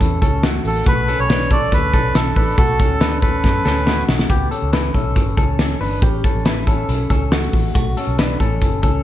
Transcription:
Already playing: clean electric guitar C#4 A4
0.00 fingered electric bass E2, kick, closed hi-hat
0.22 fingered electric bass C#2, clean electric guitar C#4 A4, kick, closed hi-hat
0.43 clean electric guitar A3 F#4, snare, closed hi-hat
0.65 fingered electric bass A1, melodica A4, open hi-hat
0.86 fingered electric bass B1, clean electric guitar A3 F#4, melodica B4, kick, closed hi-hat
1.08 clean electric guitar C#4 A4, closed hi-hat
1.19 fingered electric bass B1, melodica C#5
1.30 clean electric guitar D4 B4, snare, closed hi-hat
1.51 clean electric guitar C#4 A4, melodica D5, kick, closed hi-hat
1.72 fingered electric bass D2, melodica B4, kick, closed hi-hat
1.93 fingered electric bass B1, clean electric guitar C#4 A4, kick, closed hi-hat
2.15 fingered electric bass B1, melodica A4, snare, closed hi-hat
2.36 fingered electric bass A1, clean electric guitar D4 B4, kick, open hi-hat
2.58 fingered electric bass B1, clean electric guitar A3 F#4, melodica A4, kick, closed hi-hat
2.79 clean electric guitar C#4 A4, kick, closed hi-hat
2.90 fingered electric bass D2
3.01 clean electric guitar D4 B4, snare, closed hi-hat
3.22 clean electric guitar C#4 A4, melodica B4, kick, closed hi-hat
3.44 fingered electric bass F#2, kick, snare
3.65 fingered electric bass D2, clean electric guitar C#4 A4, snare
3.87 clean electric guitar A3 F#4, snare
4.08 fingered electric bass B1, snare
4.19 snare
4.29 fingered electric bass C#2, clean electric guitar B3 G4, kick, closed hi-hat
4.51 clean electric guitar C#4 A4, closed hi-hat
4.62 fingered electric bass C#2
4.73 clean electric guitar E4 B4, snare, closed hi-hat
4.94 fingered electric bass B1, clean electric guitar C#4 A4, kick, closed hi-hat
5.16 fingered electric bass G1, kick, closed hi-hat
5.37 fingered electric bass C#2, clean electric guitar C#4 A4, kick, closed hi-hat
5.59 snare, closed hi-hat
5.81 fingered electric bass G1, clean electric guitar D4 B4, open hi-hat
6.02 fingered electric bass A1, clean electric guitar C#4 G4, kick, closed hi-hat
6.24 clean electric guitar C#4 A4, kick, closed hi-hat
6.35 fingered electric bass A1
6.45 clean electric guitar E4 B4, snare, closed hi-hat
6.67 clean electric guitar C#4 A4, kick, closed hi-hat
6.89 fingered electric bass B1, closed hi-hat
7.10 fingered electric bass C#2, clean electric guitar C#4 A4, kick, closed hi-hat
7.32 clean electric guitar A3 F#4, snare, closed hi-hat
7.53 fingered electric bass A1, kick, open hi-hat
7.75 fingered electric bass B1, clean electric guitar A3 F#4, kick, closed hi-hat
7.97 clean electric guitar C#4 A4, closed hi-hat
8.07 fingered electric bass B1
8.19 clean electric guitar D4 B4, snare, closed hi-hat
8.40 fingered electric bass A1, clean electric guitar C#4 A4, kick, closed hi-hat
8.62 fingered electric bass F#1, kick, closed hi-hat
8.83 fingered electric bass C#2, clean electric guitar C#4 A4, kick, closed hi-hat

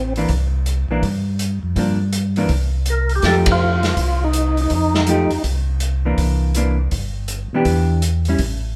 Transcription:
Already playing: tonewheel organ A1 C4
0.16 hollow-body jazz guitar E3 A#3 D4, open hi-hat
0.29 tonewheel organ C2, kick, open hi-hat
0.66 closed hi-hat
0.89 tonewheel organ A#1, hollow-body jazz guitar E3 A#3 D4
1.02 tonewheel organ G2, kick, open hi-hat
1.39 closed hi-hat
1.63 tonewheel organ F2
1.76 tonewheel organ G2, hollow-body jazz guitar F3 A#3 D4, kick, open hi-hat
2.13 closed hi-hat
2.36 hollow-body jazz guitar E3 A#3 D4, open hi-hat
2.49 tonewheel organ C2, kick, open hi-hat
2.86 closed hi-hat
2.90 tonewheel organ A#4
3.09 open hi-hat
3.15 tonewheel organ G4
3.22 tonewheel organ F2 A4, hollow-body jazz guitar F3 A3 D#4 G4, kick, snare, open hi-hat
3.46 kick, ride
3.52 tonewheel organ F4
3.83 snare, open hi-hat
3.87 tonewheel organ F4
3.97 tonewheel organ C2, kick, open hi-hat
4.24 tonewheel organ D#4
4.33 closed hi-hat
4.57 open hi-hat
4.62 tonewheel organ D#4
4.70 tonewheel organ F2, kick, open hi-hat
4.75 tonewheel organ D#4
4.95 snare
5.07 hollow-body jazz guitar F3 A3 D#4 G4, closed hi-hat
5.30 tonewheel organ F2, open hi-hat
5.44 tonewheel organ C2, kick, open hi-hat
5.80 closed hi-hat
6.05 hollow-body jazz guitar E3 A#3 D4
6.18 tonewheel organ C2, kick, open hi-hat
6.55 hollow-body jazz guitar E3 A#3 D4, closed hi-hat
6.91 tonewheel organ G1, kick, open hi-hat
7.28 closed hi-hat
7.53 tonewheel organ B2, hollow-body jazz guitar E3 B3 D4 G4
7.65 tonewheel organ E2, kick, open hi-hat
8.02 closed hi-hat
8.25 hollow-body jazz guitar G3 C#4, open hi-hat
8.30 hollow-body jazz guitar E4
8.38 tonewheel organ A1, kick, open hi-hat

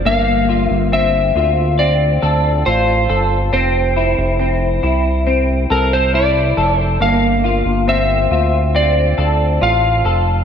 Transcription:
Already playing: clean electric guitar A3 D4
0.05 analog synth bass G1, clean electric guitar A#3, electric slide guitar F5
0.49 clean electric guitar F4
0.67 analog synth bass G1, electric slide guitar E5
0.92 clean electric guitar C4, electric slide guitar E5
1.35 analog synth bass D2, clean electric guitar F4
1.79 clean electric guitar C4, electric slide guitar D5
2.22 analog synth bass D2, clean electric guitar A4
2.66 analog synth bass A1, clean electric guitar F4, electric slide guitar C5
3.09 analog synth bass G1, clean electric guitar A4
3.53 analog synth bass F1, clean electric guitar C4, electric slide guitar C5
3.96 clean electric guitar E4
4.18 analog synth bass F1
4.39 clean electric guitar C4
4.83 analog synth bass C2, clean electric guitar E4
5.27 clean electric guitar C4
5.70 analog synth bass C2, clean electric guitar A4, electric slide guitar A#4
5.93 electric slide guitar C5
6.14 clean electric guitar E4, electric slide guitar D5
6.57 analog synth bass F1, clean electric guitar A4
6.79 electric slide guitar C5
7.00 analog synth bass G1, clean electric guitar A#3, electric slide guitar F5
7.44 clean electric guitar F4
7.65 analog synth bass G1
7.88 clean electric guitar C4, electric slide guitar E5
8.31 analog synth bass D2, clean electric guitar F4
8.75 clean electric guitar C4, electric slide guitar D5
9.18 analog synth bass D2, clean electric guitar A4
9.61 analog synth bass A1, clean electric guitar F4, electric slide guitar F5
10.05 analog synth bass F1, clean electric guitar A4

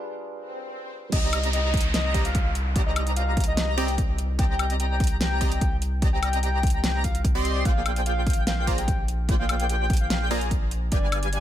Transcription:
Already playing: tine electric piano G3 D4 F4 G#4 B4 F5
0.31 swell
1.12 sub bass C2, supersaw synth C4 G4 D5 D#5 A#5, soft synth lead D#5, digital synth lead A#5, kick, closed hi-hat, crash, downlifter
1.33 closed hi-hat, high woodblock
1.43 closed hi-hat
1.53 soft synth lead D#5, closed hi-hat
1.74 kick, closed hi-hat
1.77 closed hi-hat
1.81 closed hi-hat
1.94 soft synth lead D#5, snare, closed hi-hat
2.14 supersaw synth C4 G4 D5 D#5 A#5, digital synth lead A#5, kick, closed hi-hat
2.25 soft synth lead F5, closed hi-hat
2.35 kick, closed hi-hat
2.55 closed hi-hat
2.76 supersaw synth C4 G4 D5 D#5 A#5, digital synth lead A#5, kick, closed hi-hat
2.86 soft synth lead D#5
2.96 closed hi-hat, high woodblock
3.07 closed hi-hat
3.16 soft synth lead F5, closed hi-hat
3.37 kick, closed hi-hat
3.40 closed hi-hat
3.44 soft synth lead D#5, closed hi-hat
3.57 snare, closed hi-hat
3.78 supersaw synth C4 G4 D5 D#5 A#5, soft synth lead G5, digital synth lead A#5, closed hi-hat
3.88 closed hi-hat
3.98 kick, closed hi-hat
4.18 closed hi-hat
4.39 supersaw synth C4 G4 D5 D#5 A#5, soft synth lead G5, digital synth lead A#5, kick, closed hi-hat
4.59 closed hi-hat, high woodblock
4.70 closed hi-hat
4.80 soft synth lead G5, closed hi-hat
5.00 kick, closed hi-hat
5.04 closed hi-hat
5.07 closed hi-hat
5.21 soft synth lead G5, snare, closed hi-hat
5.41 supersaw synth C4 G4 D5 D#5 A#5, digital synth lead A#5, kick, closed hi-hat
5.51 soft synth lead G5, closed hi-hat
5.61 kick, closed hi-hat
5.82 closed hi-hat
6.02 supersaw synth C4 G4 D5 D#5 A#5, digital synth lead A#5, kick, closed hi-hat
6.13 soft synth lead G5
6.23 closed hi-hat, high woodblock
6.33 closed hi-hat
6.43 soft synth lead G5, closed hi-hat
6.63 kick, closed hi-hat
6.67 closed hi-hat
6.70 soft synth lead G5, closed hi-hat
6.84 snare, closed hi-hat
7.04 soft synth lead F5, kick, closed hi-hat
7.15 closed hi-hat
7.25 kick, closed hi-hat
7.35 supersaw synth C4 G4 D5 D#5 C6, digital synth lead C6
7.45 closed hi-hat
7.65 sub bass A#1, supersaw synth A#3 F4 G#4 C5 D5 G5, soft synth lead F5, digital synth lead G5, kick, closed hi-hat
7.86 closed hi-hat, high woodblock
7.96 closed hi-hat
8.06 soft synth lead F5, closed hi-hat
8.27 kick, closed hi-hat
8.30 closed hi-hat
8.33 closed hi-hat
8.47 soft synth lead F5, snare, closed hi-hat
8.67 supersaw synth A#3 F4 G#4 C5 D5 A#5, digital synth lead A#5, kick, closed hi-hat
8.78 soft synth lead G5, closed hi-hat
8.88 kick, closed hi-hat
9.08 closed hi-hat
9.29 supersaw synth A#3 F4 G#4 C5 D5 G5, digital synth lead G5, kick, closed hi-hat
9.39 soft synth lead F5
9.49 closed hi-hat, high woodblock
9.60 closed hi-hat
9.69 soft synth lead G5, closed hi-hat
9.90 kick, closed hi-hat
9.93 closed hi-hat
9.97 closed hi-hat
10.01 soft synth lead F5
10.10 snare, closed hi-hat
10.31 supersaw synth A#3 F4 G#4 C5 D5 A#5, soft synth lead G#5, digital synth lead A#5, closed hi-hat
10.41 closed hi-hat
10.51 kick, closed hi-hat
10.71 closed hi-hat
10.92 sub bass G1, supersaw synth G3 G4 B4 F5 G#5, soft synth lead D5, digital synth lead G#5, kick, closed hi-hat
11.12 closed hi-hat, high woodblock
11.23 closed hi-hat
11.33 soft synth lead D5, closed hi-hat

